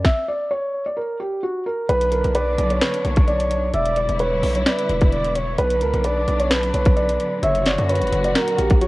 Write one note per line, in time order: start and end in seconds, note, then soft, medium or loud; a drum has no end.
0.04 0.25 E5 medium
0.04 kick loud
0.04 snare medium
0.28 0.48 D5 medium
0.51 0.84 C#5 medium
0.86 0.95 D5 medium
0.97 1.17 A#4 medium
1.20 1.40 G4 medium
1.43 1.63 F#4 medium
1.66 1.86 A#4 medium
1.89 2.23 B1 loud
1.89 3.72 D3 medium
1.89 3.72 F#3 medium
1.89 3.72 B3 medium
1.89 3.72 D4 medium
1.89 2.32 B4 loud
1.89 2.09 B4 medium
1.89 closed hi-hat medium
2.01 closed hi-hat medium
2.12 2.32 A#4 medium
2.12 closed hi-hat medium
2.24 2.57 B1 loud
2.24 closed hi-hat soft
2.35 2.68 B4 medium
2.35 2.79 D5 medium
2.35 closed hi-hat medium
2.58 2.80 B1 loud
2.58 closed hi-hat medium
2.70 2.80 C#5 medium
2.70 closed hi-hat medium
2.81 3.02 B4 medium
2.81 3.70 C#5 loud
2.81 snare loud
2.81 closed hi-hat medium
2.94 closed hi-hat medium
3.05 3.71 B1 loud
3.05 3.25 C#5 medium
3.05 closed hi-hat medium
3.16 kick loud
3.16 closed hi-hat medium
3.27 3.71 D5 medium
3.27 closed hi-hat soft
3.40 closed hi-hat medium
3.51 closed hi-hat medium
3.73 4.08 E1 loud
3.73 5.57 D3 medium
3.73 5.57 G3 medium
3.73 7.39 B3 medium
3.73 5.57 E4 medium
3.73 4.17 D5 loud
3.73 3.94 E5 medium
3.73 closed hi-hat medium
3.86 closed hi-hat medium
3.96 4.17 D5 medium
3.96 closed hi-hat medium
4.09 4.42 E1 loud
4.09 closed hi-hat soft
4.19 4.53 B4 medium
4.19 4.63 C#5 medium
4.19 closed hi-hat medium
4.43 4.65 B1 loud
4.43 open hi-hat medium
4.55 4.65 C#5 medium
4.55 closed hi-hat medium
4.66 5.09 B4 medium
4.66 5.31 D5 medium
4.66 snare loud
4.66 closed hi-hat medium
4.78 closed hi-hat medium
4.89 5.56 E1 loud
4.89 closed hi-hat medium
5.01 kick loud
5.01 closed hi-hat medium
5.12 5.34 D5 medium
5.12 closed hi-hat soft
5.24 closed hi-hat medium
5.35 5.57 C#5 medium
5.35 5.55 C#5 medium
5.35 closed hi-hat medium
5.58 5.83 B1 loud
5.58 8.88 D3 medium
5.58 8.88 F#3 medium
5.58 7.41 D4 medium
5.58 6.02 B4 loud
5.58 5.79 B4 medium
5.58 closed hi-hat medium
5.70 closed hi-hat medium
5.81 5.93 C#2 loud
5.81 6.02 A#4 medium
5.81 closed hi-hat medium
5.93 6.26 B1 loud
5.93 closed hi-hat soft
6.04 6.38 B4 medium
6.04 6.48 D5 medium
6.04 closed hi-hat medium
6.28 6.72 B1 loud
6.28 closed hi-hat medium
6.39 6.49 C#5 medium
6.39 closed hi-hat medium
6.50 6.71 B4 medium
6.50 7.39 B4 loud
6.50 snare loud
6.50 closed hi-hat medium
6.63 closed hi-hat medium
6.74 7.18 B1 loud
6.74 6.94 C#5 medium
6.74 closed hi-hat medium
6.85 kick loud
6.85 closed hi-hat medium
6.97 7.40 D5 medium
6.97 closed hi-hat soft
7.09 closed hi-hat medium
7.20 closed hi-hat medium
7.43 7.77 F#1 loud
7.43 8.88 A#2 medium
7.43 8.88 F#4 medium
7.43 7.86 C#5 medium
7.43 7.63 E5 medium
7.43 closed hi-hat medium
7.55 closed hi-hat medium
7.66 7.86 D5 medium
7.66 snare medium
7.66 closed hi-hat medium
7.78 8.03 F#2 loud
7.78 closed hi-hat soft
7.89 8.32 B4 medium
7.89 8.22 C#5 medium
7.89 closed hi-hat medium
7.95 closed hi-hat medium
8.01 8.12 G1 loud
8.01 closed hi-hat medium
8.07 closed hi-hat soft
8.12 8.34 F#1 loud
8.12 closed hi-hat medium
8.24 8.34 D5 medium
8.24 closed hi-hat medium
8.35 8.55 A#4 medium
8.35 8.79 A#4 loud
8.35 snare loud
8.35 closed hi-hat medium
8.48 closed hi-hat medium
8.58 8.88 A#1 loud
8.58 8.79 G4 medium
8.58 closed hi-hat medium
8.70 kick loud
8.70 closed hi-hat medium
8.81 8.88 F#4 medium
8.81 8.88 C#5 medium
8.81 closed hi-hat medium